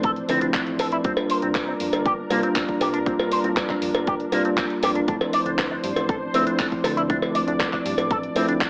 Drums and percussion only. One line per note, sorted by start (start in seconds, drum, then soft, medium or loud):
0.03 kick loud
0.03 closed hi-hat medium
0.16 closed hi-hat soft
0.29 open hi-hat loud
0.29 cowbell medium
0.41 closed hi-hat soft
0.54 kick loud
0.54 clap loud
0.54 closed hi-hat medium
0.67 closed hi-hat soft
0.79 open hi-hat loud
0.79 cowbell loud
0.92 closed hi-hat medium
1.04 kick loud
1.04 closed hi-hat medium
1.17 cowbell medium
1.30 open hi-hat loud
1.42 closed hi-hat soft
1.55 kick loud
1.55 clap loud
1.55 closed hi-hat medium
1.55 cowbell medium
1.80 open hi-hat loud
1.93 closed hi-hat soft
1.93 cowbell medium
2.06 kick loud
2.06 closed hi-hat medium
2.30 open hi-hat loud
2.30 cowbell medium
2.43 closed hi-hat soft
2.56 kick loud
2.56 clap loud
2.56 closed hi-hat medium
2.69 kick medium
2.69 closed hi-hat soft
2.81 open hi-hat loud
2.81 cowbell medium
2.94 closed hi-hat soft
3.06 kick loud
3.06 closed hi-hat medium
3.19 cowbell medium
3.32 open hi-hat loud
3.44 closed hi-hat soft
3.57 kick loud
3.57 clap loud
3.57 closed hi-hat medium
3.57 cowbell medium
3.70 kick medium
3.70 clap soft
3.82 open hi-hat loud
3.94 closed hi-hat soft
3.94 cowbell medium
4.07 kick loud
4.07 closed hi-hat medium
4.20 closed hi-hat soft
4.32 open hi-hat loud
4.32 cowbell medium
4.45 closed hi-hat soft
4.58 kick loud
4.58 clap loud
4.58 closed hi-hat medium
4.70 closed hi-hat soft
4.83 open hi-hat loud
4.83 cowbell medium
4.95 closed hi-hat soft
5.08 kick loud
5.08 closed hi-hat medium
5.21 cowbell medium
5.33 open hi-hat loud
5.46 closed hi-hat soft
5.59 kick loud
5.59 clap loud
5.59 closed hi-hat medium
5.59 cowbell medium
5.84 open hi-hat loud
5.96 closed hi-hat soft
5.96 cowbell medium
6.09 kick loud
6.09 closed hi-hat medium
6.34 open hi-hat loud
6.34 cowbell medium
6.47 closed hi-hat soft
6.59 kick loud
6.59 clap loud
6.59 closed hi-hat medium
6.72 kick medium
6.72 closed hi-hat soft
6.84 open hi-hat loud
6.84 cowbell medium
6.97 closed hi-hat soft
7.10 kick loud
7.10 closed hi-hat medium
7.22 cowbell medium
7.35 open hi-hat medium
7.48 closed hi-hat soft
7.59 kick loud
7.59 clap loud
7.59 closed hi-hat medium
7.59 cowbell medium
7.73 kick medium
7.73 clap soft
7.86 open hi-hat medium
7.98 closed hi-hat soft
7.98 cowbell medium
8.11 kick loud
8.11 closed hi-hat medium
8.23 closed hi-hat soft
8.36 open hi-hat loud
8.36 cowbell medium
8.49 closed hi-hat medium
8.61 kick loud
8.61 clap loud
8.61 closed hi-hat medium